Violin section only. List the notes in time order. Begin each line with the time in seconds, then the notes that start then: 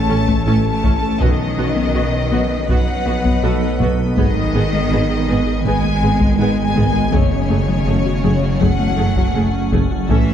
Already playing: A5
0.47 A5
0.72 A5
0.97 A5
1.21 D#5
2.69 F#5
4.18 D#5
5.65 G#5
6.39 G#5
6.63 G#5
6.88 G#5
7.14 C#5
8.61 F#5
10.09 E5